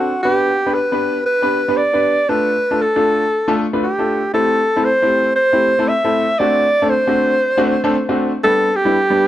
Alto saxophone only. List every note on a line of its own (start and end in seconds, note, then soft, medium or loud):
0.00 0.21 F#4 medium
0.23 0.76 G4 loud
0.74 1.25 B4 loud
1.26 1.79 B4 loud
1.77 2.31 D5 loud
2.29 2.83 B4 loud
2.82 3.63 A4 medium
3.83 4.31 G4 medium
4.34 4.86 A4 loud
4.85 5.35 C5 loud
5.36 5.90 C5 loud
5.88 6.41 E5 loud
6.39 6.91 D5 loud
6.90 8.24 C5 medium
8.44 8.77 A4 loud
8.76 9.28 G4 loud